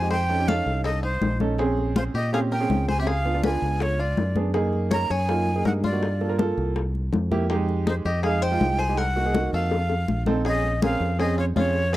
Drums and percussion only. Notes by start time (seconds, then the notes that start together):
0.11 high bongo, high conga
0.29 high bongo, high conga
0.48 high bongo, high conga
0.67 high bongo, high conga
0.85 high bongo, high conga
1.04 high conga
1.22 high bongo, low bongo, high conga
1.40 high bongo, high conga
1.58 high bongo, high conga
1.77 high bongo, high conga
1.96 high bongo, high conga
2.15 high bongo, high conga
2.33 high bongo, high conga
2.52 high conga
2.70 high bongo, low bongo, high conga
2.88 high bongo, high conga
3.07 high bongo, high conga
3.25 high bongo, high conga
3.43 high bongo, high conga
3.62 high bongo, high conga
3.80 high bongo, high conga
3.99 high conga
4.17 high bongo, low bongo, high conga
4.36 high bongo, high conga
4.54 high bongo, high conga
4.72 high bongo, high conga
4.91 high bongo, high conga
5.10 high bongo, high conga
5.29 high bongo, high conga
5.47 high conga
5.65 high bongo, low bongo, high conga
5.84 high bongo, high conga
6.02 high bongo, high conga
6.21 high bongo, high conga
6.39 high bongo, high conga
6.58 high bongo, high conga
6.76 high bongo, high conga
6.95 high conga
7.13 high bongo, low bongo, high conga
7.31 high bongo, high conga
7.50 high bongo, high conga
7.68 high bongo, high conga
7.87 high bongo, high conga
8.05 high bongo, high conga
8.24 high bongo, high conga
8.43 high conga
8.61 high bongo, low bongo, high conga
8.79 high bongo
8.98 high bongo, high conga
9.16 high bongo, high conga
9.34 high bongo, high conga
9.53 high bongo, high conga
9.71 high bongo, high conga
9.89 high bongo, high conga
10.08 high conga
10.26 low bongo, high conga
10.45 high bongo, high conga
10.63 high bongo, high conga
10.82 high bongo, high conga
11.01 high bongo, high conga
11.20 high bongo, high conga
11.38 high conga
11.56 high bongo, low bongo, high conga
11.75 high bongo
11.93 high bongo, high conga